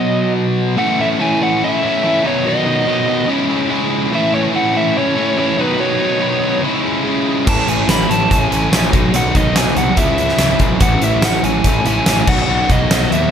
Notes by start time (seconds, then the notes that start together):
Already playing: B2 F#3 B3 D#5
0.77 A2 E3 A3 C#4 E4 F#5
0.98 A3 C#4 E4 E5
1.19 A2 E3 A3 C#4 E4 G#5
1.40 A3 C#4 E4 F#5
1.64 E5
1.82 A3 C#4 E4
2.03 E3 A3 C#4 E4
2.24 B2 D#3 F#3 B3 D#4 C#5
2.45 B2 D#3 F#3 B3 D#4 D#5
2.65 F#3 B3 D#4
2.86 B2 D#3 F#3 B3 D#4
3.07 F#3 B3 D#4
3.28 C#3 G#3 C#4 E4
3.49 G#3 C#4 E4
3.69 C#3 G#3 C#4 E4
4.12 A2 E3 A3 C#4 E4 E5
4.32 A3 C#4 E4 C#5
4.53 A2 E3 A3 C#4 E4 F#5
4.74 A3 C#4 E4 E5
4.98 C#5
5.16 A3 C#4 E4
5.36 E3 A3 C#4 E4 C#5
5.58 B2 D#3 F#3 B3 D#4 B4
5.79 B2 D#3 F#3 B3 D#4 C#5
5.99 F#3 B3 D#4
6.20 B2 D#3 F#3 B3 D#4
6.41 F#3 B3 D#4
6.62 C#3 G#3 C#4 E4
6.83 G#3 C#4 E4
7.03 C#3 G#3 C#4 E4
7.46 A1 A2 E3 A3 C#4 E4 A5, kick, crash
7.66 A1 A3 C#4 E4 G#5, closed hi-hat
7.87 A1 A2 E3 A3 C#4 E4 B5, snare, closed hi-hat, tambourine
8.00 snare
8.08 A1 A3 C#4 E4 A5, closed hi-hat
8.31 A1 G#5, kick, closed hi-hat
8.50 A1 A3 C#4 E4, closed hi-hat
8.71 A#1 E3 A3 C#4 E4, snare, closed hi-hat, tambourine
8.92 B1 B2 D#3 F#3 B3 D#4, kick, closed hi-hat
9.13 B1 B2 D#3 F#3 B3 D#4 F#5, closed hi-hat
9.33 B1 F#3 B3 D#4 D#5, kick, closed hi-hat
9.54 B1 B2 D#3 F#3 B3 D#4 G#5, snare, closed hi-hat, tambourine
9.66 snare
9.75 C2 F#3 B3 D#4 F#5, closed hi-hat
9.95 C#2 C#3 G#3 C#4 E4 E5, kick, closed hi-hat
10.17 G#3 C#4 E4, closed hi-hat
10.28 snare
10.38 C#2 C#3 G#3 C#4 E4, snare, closed hi-hat, tambourine
10.59 B1, kick, closed hi-hat
10.79 A1 A2 E3 A3 C#4 E4 F#5, kick, closed hi-hat
11.01 A1 A3 C#4 E4 E5, closed hi-hat
11.22 A1 A2 E3 A3 C#4 E4 F#5, snare, closed hi-hat, tambourine
11.43 A1 A3 C#4 E4 G#5, closed hi-hat
11.64 A1, kick, closed hi-hat
11.85 A1 A3 C#4 E4 G#5, closed hi-hat
12.06 A1 E3 A3 C#4 E4, snare, closed hi-hat, tambourine
12.27 B1 B2 D#3 F#3 B3 F#4 F#5, kick, crash
12.48 B1 B2 D#3 F#3 B3 F#4
12.69 B1 F#3 B3 F#4 D#5, kick, closed hi-hat
12.90 B1 B2 D#3 F#3 B3 F#4, snare, closed hi-hat, tambourine
13.02 snare
13.12 D#2 F#3 B3 F#4 E5, closed hi-hat